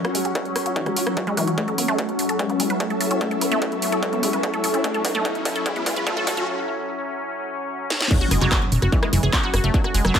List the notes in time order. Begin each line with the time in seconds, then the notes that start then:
Already playing: F#3 C#4 F#4 C#5 F#5
0.05 F#4, cross-stick, closed hi-hat
0.15 G#3, open hi-hat
0.25 G#4, closed hi-hat
0.35 kick, cross-stick, closed hi-hat
0.45 closed hi-hat
0.56 cross-stick, open hi-hat
0.66 F#4, closed hi-hat
0.76 E3, kick, closed hi-hat
0.86 G#3, cross-stick, closed hi-hat
0.96 F#4, open hi-hat
1.07 F#3, cross-stick, closed hi-hat
1.17 F#3, kick, closed hi-hat
1.27 G#3, closed hi-hat
1.37 E3, cross-stick, open hi-hat
1.47 F#4, closed hi-hat
1.58 A3 E4, kick, closed hi-hat, riser
1.68 A4, closed hi-hat
1.73 A4
1.78 B3, open hi-hat
1.88 A3 E5, closed hi-hat
1.99 kick, closed hi-hat
2.09 closed hi-hat
2.19 open hi-hat
2.29 A4, closed hi-hat
2.39 G#3, kick, closed hi-hat
2.50 B3, closed hi-hat
2.60 G#3, open hi-hat
2.70 B4, closed hi-hat
2.80 A3, kick, closed hi-hat
2.90 A4, closed hi-hat
3.01 A4, open hi-hat
3.11 C#4, closed hi-hat
3.21 A3, kick, closed hi-hat
3.31 A4, closed hi-hat
3.41 B3, open hi-hat
3.52 A3, closed hi-hat
3.62 kick, closed hi-hat
3.72 closed hi-hat
3.82 open hi-hat
3.92 A4, closed hi-hat
4.03 G#3, kick, closed hi-hat
4.13 B3, closed hi-hat
4.23 G#3, open hi-hat
4.33 B4, closed hi-hat
4.43 A3, kick, closed hi-hat
4.54 A4, closed hi-hat
4.64 A4, open hi-hat
4.74 C#4, closed hi-hat
4.84 A3, kick, closed hi-hat
4.94 A4, closed hi-hat
5.05 B3, kick, open hi-hat
5.15 A3, closed hi-hat
5.25 kick, closed hi-hat
5.35 closed hi-hat
5.45 kick, open hi-hat
5.56 A4, closed hi-hat
5.66 G#3, kick, closed hi-hat
5.76 B3, closed hi-hat
5.86 G#3, kick, open hi-hat
5.96 B4, closed hi-hat
6.07 A3, kick, closed hi-hat
6.17 A4, closed hi-hat
6.27 A4, kick, open hi-hat
6.37 C#4, closed hi-hat
7.90 snare
8.01 snare
8.11 F#3 C#4, kick, closed hi-hat, crash, impact
8.21 F#4, closed hi-hat
8.31 F#1 G#3, cross-stick, open hi-hat
8.41 F#1 F#3, clap, closed hi-hat
8.52 kick, cross-stick, clap, closed hi-hat
8.62 closed hi-hat
8.72 E1, open hi-hat
8.82 F#1 F#4, cross-stick, closed hi-hat
8.92 E3, kick, closed hi-hat
9.03 G#3, cross-stick, closed hi-hat
9.13 F#1 E3, open hi-hat
9.23 F#1 G#4, closed hi-hat
9.33 F#3, kick, cross-stick, clap, closed hi-hat
9.43 F#4, closed hi-hat
9.54 F#1 F#4, cross-stick, open hi-hat
9.64 F#1 A3, closed hi-hat
9.74 F#3, kick, closed hi-hat
9.84 F#4, cross-stick, closed hi-hat
9.94 F#1 G#3, open hi-hat
10.05 F#1 F#3, cross-stick, closed hi-hat
10.15 kick, clap, closed hi-hat